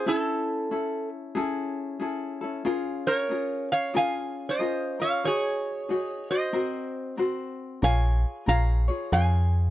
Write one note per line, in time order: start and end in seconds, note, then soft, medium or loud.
0.06 0.70 C#4 medium
0.06 0.70 E4 medium
0.06 1.09 E4 medium
0.06 0.71 A4 medium
0.06 1.08 A4 medium
0.71 1.35 C#4 medium
0.71 1.35 E4 medium
0.71 1.36 A4 medium
1.35 2.00 C#4 medium
1.35 2.00 E4 loud
1.35 1.99 G#4 medium
1.35 2.00 A4 medium
2.00 2.41 C#4 medium
2.00 2.41 E4 medium
2.00 2.41 G#4 medium
2.00 2.40 A4 medium
2.41 2.64 C#4 soft
2.41 2.65 E4 soft
2.41 2.65 A4 medium
2.65 3.29 C#4 medium
2.65 3.30 F4 medium
2.65 3.29 G#4 medium
2.65 3.30 A#4 medium
3.07 3.68 A#4 medium
3.07 3.72 C#5 medium
3.29 3.94 C#4 medium
3.29 3.93 F4 medium
3.29 3.93 G#4 medium
3.29 3.94 A#4 medium
3.72 3.94 C#5 medium
3.72 3.96 F5 loud
3.94 4.58 C#4 medium
3.94 4.59 F4 loud
3.94 4.59 G#4 medium
3.94 4.60 A#4 medium
3.94 4.50 G#5 loud
3.98 4.45 F5 medium
4.49 4.98 C5 medium
4.49 5.02 D#5 medium
4.59 5.00 C#4 medium
4.59 5.00 F4 medium
4.59 5.00 G#4 medium
4.59 4.98 A#4 medium
5.00 5.24 C#4 soft
5.00 5.24 F4 soft
5.00 5.24 A#4 soft
5.00 5.24 C#5 medium
5.00 5.25 F5 medium
5.24 5.89 D#4 medium
5.24 5.89 F#4 medium
5.24 5.89 G#4 medium
5.24 6.27 G#4 medium
5.24 6.30 C#5 medium
5.24 5.89 C#5 medium
5.89 6.30 D#4 medium
5.89 6.29 F#4 medium
5.89 6.30 G#4 medium
5.89 6.31 C#5 medium
6.31 6.52 D#4 soft
6.31 6.53 F#4 soft
6.31 7.15 C5 medium
6.31 7.15 D#5 medium
6.53 7.17 C4 medium
6.53 7.18 F#4 medium
6.53 7.17 A#4 medium
6.53 7.18 C5 medium
7.17 7.82 C4 medium
7.17 7.83 F#4 medium
7.17 7.82 A#4 medium
7.17 7.83 C5 medium
7.82 8.25 A#1 loud
7.82 8.46 F4 medium
7.82 8.46 G#4 medium
7.82 8.46 A#4 medium
7.82 8.48 C#5 medium
7.82 8.44 F5 medium
7.82 8.48 G#5 loud
8.46 8.90 A#1 loud
8.46 8.88 F4 medium
8.46 8.88 G#4 medium
8.46 8.88 A#4 medium
8.46 8.87 C#5 medium
8.46 9.09 F5 medium
8.46 9.13 A#5 loud
8.88 9.12 F4 soft
8.88 9.12 G#4 soft
8.88 9.12 C#5 medium
9.12 9.70 F2 loud
9.12 9.70 F4 medium
9.12 9.70 G#4 medium
9.12 9.70 A#4 medium
9.12 9.70 C#5 loud
9.12 9.70 F5 medium
9.12 9.70 G#5 loud